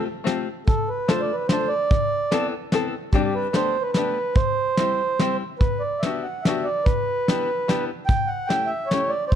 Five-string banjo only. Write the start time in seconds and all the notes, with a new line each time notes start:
0.24 A3 C4 F4 G4
1.08 A3 D4 F4 A4
1.51 A3 D4 F4 A4
2.31 B3 C4 E4 A4
2.72 B3 C4 E4 A4
3.14 G3 C4 D4 G4
3.53 A3 B3 D4 G4
3.96 A3 B3 D4 G4
4.79 G3 C4 E4 G4
5.20 G3 C4 E4 G4
6.04 B3 D4 F#4 G4
6.46 B3 D4 F#4 G4
7.28 B3 D4 E4 G4
7.68 B3 D4 E4 G4
8.49 A3 C#4 E4 G4
8.92 A3 C#4 E4 G4